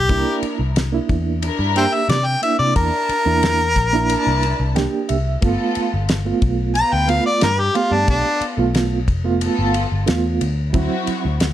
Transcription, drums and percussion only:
0.09 kick loud
0.09 ride medium
0.43 ride medium
0.76 snare loud
0.76 ride medium
1.09 kick medium
1.09 ride medium
1.42 ride medium
1.76 ride medium
2.09 snare medium
2.09 ride medium
2.43 ride medium
2.76 kick loud
2.76 ride medium
3.09 ride medium
3.43 snare loud
3.43 ride medium
3.76 kick medium
3.76 ride medium
4.10 ride medium
4.43 ride medium
4.76 snare loud
4.76 ride medium
5.09 ride medium
5.42 kick loud
5.42 ride medium
5.75 ride medium
6.09 snare loud
6.09 ride medium
6.42 kick medium
6.42 ride medium
6.75 ride medium
7.09 ride medium
7.41 snare loud
7.41 ride medium
7.75 ride medium
8.08 kick loud
8.08 ride medium
8.41 ride medium
8.75 snare loud
8.75 ride medium
9.08 kick medium
9.08 ride medium
9.41 ride medium
9.74 ride medium
10.07 snare loud
10.07 ride medium
10.41 ride medium
10.74 kick loud
10.74 ride medium
11.07 ride medium
11.40 snare loud
11.40 ride medium

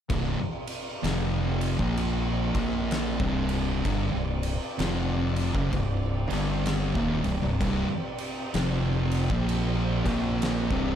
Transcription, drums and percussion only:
0.10 kick loud
0.10 ride loud
0.67 ride medium
1.04 snare loud
1.04 ride loud
1.61 ride medium
1.79 kick loud
1.97 ride loud
2.55 kick loud
2.55 ride medium
2.91 snare loud
2.91 ride loud
3.20 kick loud
3.49 ride medium
3.85 kick loud
3.85 ride loud
4.43 ride medium
4.79 snare loud
4.79 ride loud
5.36 ride medium
5.55 kick loud
5.73 kick medium
5.73 ride medium
6.30 snare soft
6.30 ride medium
6.66 snare loud
6.66 ride loud
6.95 kick loud
7.24 ride medium
7.61 kick loud
7.61 ride loud
8.18 ride medium
8.54 snare loud
8.54 ride loud
9.12 ride medium
9.30 kick loud
9.49 ride loud
10.06 kick loud
10.06 snare soft
10.06 ride medium
10.42 snare loud
10.42 ride loud
10.71 kick loud

